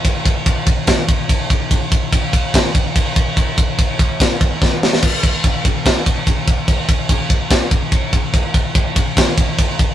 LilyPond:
\new DrumStaff \with { instrumentName = "Drums" } \drummode { \time 4/4 \tempo 4 = 145 <bd cymr>8 <bd cymr>8 <bd cymr>8 <bd cymr>8 <bd cymr sn>8 <bd cymr>8 <bd cymr>8 <bd cymr>8 | <bd cymr>8 <bd cymr>8 <bd cymr>8 <bd cymr>8 <bd cymr sn>8 <bd cymr>8 <bd cymr>8 <bd cymr>8 | <bd cymr>8 <bd cymr>8 <bd cymr>8 <bd cymr>8 <bd cymr sn>8 <bd cymr>8 <bd sn>8 sn16 sn16 | <cymc bd cymr>8 <bd cymr>8 <bd cymr>8 <bd cymr>8 <bd cymr sn>8 <bd cymr>8 <bd cymr>8 <bd cymr>8 |
<bd cymr>8 <bd cymr>8 <bd cymr>8 <bd cymr>8 <bd cymr sn>8 <bd cymr>8 <bd cymr>8 <bd cymr>8 | <bd cymr>8 <bd cymr>8 <bd cymr>8 <bd cymr>8 <bd cymr sn>8 <bd cymr>8 <bd cymr>8 <bd cymr>8 | }